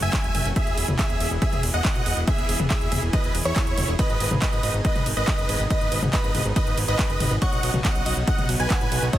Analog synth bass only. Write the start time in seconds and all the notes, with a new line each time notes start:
0.03 F#1
0.24 E1
0.35 F#1
0.45 F#1
0.67 E1
0.78 E1
0.88 E1
1.10 E1
1.20 E1
1.31 E1
1.53 E1
1.63 E1
1.74 E1
1.95 B1
2.06 E1
2.17 E1
2.38 E1
2.49 E1
2.60 E1
2.81 E1
2.92 E1
3.03 E1
3.24 E1
3.35 E1
3.45 E2
3.67 E1
3.78 E1
3.88 E1
4.10 G#1
4.20 G#1
4.31 G#1
4.53 G#1
4.63 G#1
4.74 G#1
4.95 G#1
5.06 G#1
5.17 G#1
5.38 F#1
5.49 G#1
5.60 G#1
5.81 G#1
5.92 G#1
6.03 G#1
6.24 G#1
6.35 G#1
6.45 G#1
6.67 G#1
6.78 G#1
6.88 G#1
7.10 F#1
7.20 G#1
7.31 G#1
7.53 B1
7.63 B1
7.74 B1
7.95 B1
8.06 B1
8.17 B1
8.38 B1
8.49 B1
8.60 B1
8.81 A1
8.92 B1
9.03 B1